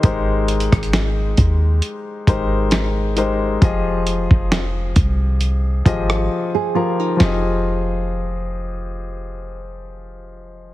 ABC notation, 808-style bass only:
X:1
M:4/4
L:1/16
Q:"Swing 16ths" 1/4=67
K:Fm
V:1 name="808-style bass" clef=bass
A,,,3 A,,,3 E,,2 z2 A,,,6 | F,,,3 F,,,3 C,,4 A,,,2 z4 | F,,,16 |]